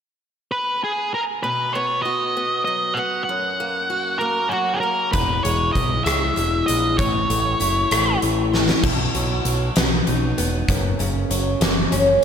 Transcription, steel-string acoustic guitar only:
1.44 B2
1.75 B3
2.05 F#4
2.37 B3
2.67 F#3
2.97 B3
3.29 F#2
3.60 A#3
3.90 F#4
4.21 A#3
4.52 F#3
4.83 A#3
5.14 E2
5.45 G#3
5.76 E4
6.06 G#3
6.36 E3
6.68 G#3
6.99 A2
7.30 A3
7.60 E4
7.91 A3
8.22 E3
8.53 A3
8.84 B2
9.15 F#3
9.46 F#3
9.78 B3
10.07 D#4
10.38 B3
10.69 F#2
10.99 C#3
11.31 F#3
11.61 A#3
11.92 C#4

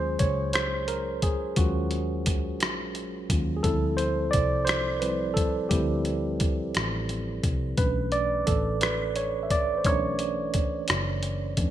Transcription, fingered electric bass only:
Already playing: D#2
0.21 C#2
1.57 D#2
2.62 A#1
3.31 D#2
3.65 D2
4.35 C2
5.72 D2
6.76 A1
7.44 C2
7.78 B1
8.49 A1
9.86 B1
10.90 F#1
11.58 F2

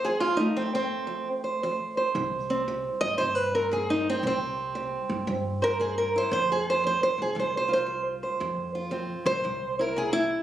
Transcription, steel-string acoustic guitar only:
0.05 F2 G#4
0.20 F4
0.37 A3 D#4
0.56 F2 C4
0.75 C4
1.07 F2
1.44 C5
1.63 F2 C5
1.97 C5
2.15 C3
2.50 C4
2.68 C3
3.01 D#5
3.18 C3 C5
3.35 B4
3.55 C4 A#4
3.71 C3 G#4
3.90 D#4
4.10 C4
4.23 C3 C4
4.75 C3
5.27 C3
5.62 A#4 C5
5.80 C3 G#4
5.98 A#4
6.16 E4 C5
6.33 F2 C5
6.52 G#4
6.70 C5
6.84 F2 C5
7.03 C5
7.22 G#4
7.35 F2
7.40 C5
7.57 C5
7.68 F4
7.73 C5
7.86 F2
8.23 C5
8.40 F2
8.75 F4
8.91 F2 C4
9.26 C5
9.44 C3
9.79 E4 A#4
9.96 C3 G#4
10.13 E4

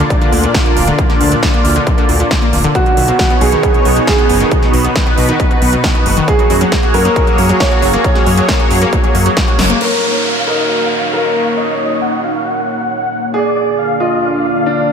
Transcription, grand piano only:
2.75 F#4
3.41 G#4
4.07 G#4
6.28 G#4
6.94 A#4
7.60 C#5
9.81 A#4
10.47 A#4
11.13 A#4
13.34 G#4
14.00 F4
14.66 D4

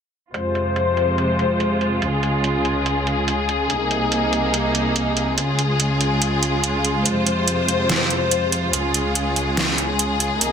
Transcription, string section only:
0.34 F2 C3 G#3 F4 C5
2.02 C#2 C#3 G#4
3.70 C2 C3 A#3 D#4
5.38 C#2 C#3 G#3 F4 G#4
7.05 F2 C3 C5
8.73 C#2 C#3 G#3 G#4
10.41 C2 C3 A#3 D#4

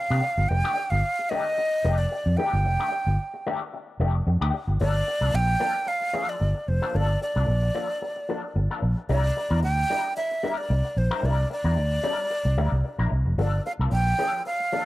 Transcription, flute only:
Already playing: F5
0.49 G5
0.90 F5
1.29 D#5
1.98 D5
2.37 G5
4.81 D5
5.35 G5
5.88 F5
6.29 D5
6.68 C5
6.96 D5
7.23 D5
9.10 D5
9.64 G5
10.17 E5
10.58 D5
10.98 C5
11.25 D5
11.52 D5
13.40 D5
13.66 F5
13.93 G5
14.46 F5

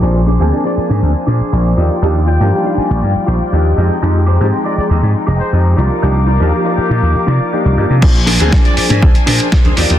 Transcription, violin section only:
0.02 D4 C5 G#5
1.77 F4 D5 G5
3.77 G#3 D#4
5.78 A#4 F5 D6
8.03 D4 C5 G#5
9.77 F4 D5 G5

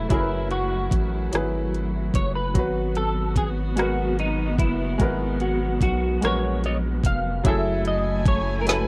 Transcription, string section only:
Already playing: F#3 A3 E4
0.10 F#4
2.55 F#3 B3
7.44 F#3 A3 E4 G#5

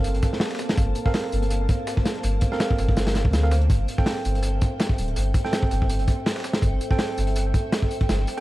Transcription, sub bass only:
Already playing: G1
0.78 G1
1.33 G1
2.24 G1
2.79 G1
3.25 D2
3.70 G1
4.25 G1
4.98 D1
5.16 G1
5.71 G1
6.62 G1
7.18 G1
8.09 G1

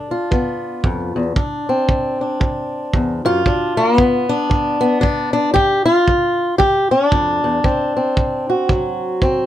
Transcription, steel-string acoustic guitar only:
Already playing: G2 D4 A4
0.11 F4
0.31 G2 B3
0.84 F2
1.16 E2
1.36 D2 D4
1.69 C4
1.89 D2
2.21 D4
2.40 D2
2.94 E2
3.25 F#2 F4
3.47 G2 D4
3.77 A#3
3.97 G2 B3
4.29 D4
4.50 G2
4.81 B3
5.01 G2 D4
5.33 D4
5.54 G2 G4
5.86 F4
6.09 G2
6.58 G2 G4
6.91 D4
7.13 F2
7.44 E2
7.64 D2 C4
7.97 C4
8.17 D2
8.50 F#4
8.69 D2 F#3
9.22 D2 C4

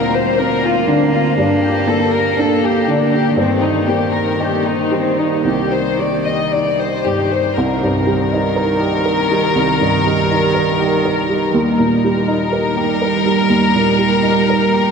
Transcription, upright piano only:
Already playing: D2 A#3
0.39 C4
0.88 D3
1.38 G2
1.87 A#3
2.39 D4
2.88 D3
3.36 G2
3.88 A#3
4.40 D#4
4.91 G3
5.44 C2
5.99 G3
6.53 D#4
7.06 G2
7.58 C2
7.83 G2
8.07 G3
8.33 D#4
8.56 A#4
8.80 G4
9.05 A#4
9.31 G3
9.55 C2
9.81 G2
10.05 G3
10.31 D#4
10.55 A#4
10.80 G4
11.05 A#4
11.29 G3
11.54 D#2
11.79 A#2
12.05 G3
12.28 D#4
12.53 A#4
12.77 G4
13.02 A#4
13.26 G3
13.50 D#2
13.75 A#2
13.99 G3
14.23 D#4
14.50 A#4
14.73 G4

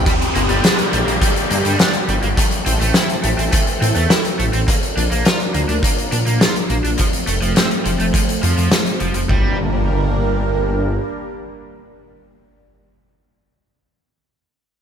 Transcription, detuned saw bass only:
0.35 G1
0.50 G1
0.93 A#1
1.07 A#1
1.51 G2
1.65 G2
2.08 G1
2.23 G1
2.66 A1
2.81 A1
3.24 A1
3.38 A1
3.81 A2
3.96 E2
4.39 A1
4.54 A1
4.97 A#1
5.11 A#1
5.55 D2
5.69 D2
6.12 A#2
6.27 A#2
6.70 A#1
6.84 A#1
7.28 F1
7.42 F1
7.85 F1
8.00 F1
8.43 F2
8.57 F2
9.01 F1
9.15 F1
9.29 G1

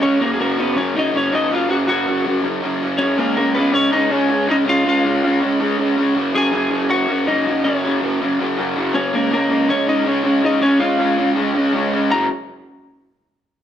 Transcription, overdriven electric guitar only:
0.02 C#3 G#3 C#4
0.21 F#2 C#3 F#3
0.39 F#2 C#3 F#3
0.58 F#2 C#3 F#3
0.76 F#2 C#3 F#3
0.95 F#2 C#3 F#3
1.14 F#2 C#3 F#3
1.32 F#2 C#3 F#3
1.51 F#2 C#3 F#3
1.69 F#2 C#3 F#3
1.88 F#2 C#3 F#3
2.07 F#2 C#3 F#3
2.24 F#2 C#3 F#3
2.44 F#2 C#3 F#3
2.61 F#2 C#3 F#3
2.82 F#2 C#3 F#3
3.00 F#2 C#3 F#3
3.17 C#3 G#3 C#4
3.36 C#3 G#3 C#4
3.56 C#3 G#3 C#4
3.72 C#3 G#3 C#4
3.92 C#3 G#3 C#4
4.10 C#3 G#3 C#4
4.29 C#3 G#3 C#4
4.48 C#3 G#3 C#4
4.65 C#3 G#3 C#4
4.85 C#3 G#3 C#4
5.04 C#3 G#3 C#4
5.23 C#3 G#3 C#4
5.41 C#3 G#3 C#4
5.60 C#3 G#3 C#4
5.77 C#3 G#3 C#4
5.97 C#3 G#3 C#4
6.15 F#2 C#3 F#3
6.34 F#2 C#3 F#3
6.52 F#2 C#3 F#3
6.70 F#2 C#3 F#3
6.89 F#2 C#3 F#3
7.08 F#2 C#3 F#3
7.28 F#2 C#3 F#3
7.47 F#2 C#3 F#3
7.65 F#2 C#3 F#3
7.84 F#2 C#3 F#3
8.02 F#2 C#3 F#3
8.21 F#2 C#3 F#3
8.40 F#2 C#3 F#3
8.57 F#2 C#3 F#3
8.76 F#2 C#3 F#3
8.94 F#2 C#3 F#3
9.13 C#3 G#3 C#4
9.31 C#3 G#3 C#4
9.50 C#3 G#3 C#4
9.69 C#3 G#3 C#4
9.87 C#3 G#3 C#4
10.05 C#3 G#3 C#4
10.24 C#3 G#3 C#4
10.42 C#3 G#3 C#4
10.61 C#3 G#3 C#4
10.79 C#3 G#3 C#4
10.98 C#3 G#3 C#4
11.17 C#3 G#3 C#4
11.36 C#3 G#3 C#4
11.54 C#3 G#3 C#4
11.74 C#3 G#3 C#4
11.92 C#3 G#3 C#4
12.10 F#2 C#3 F#3

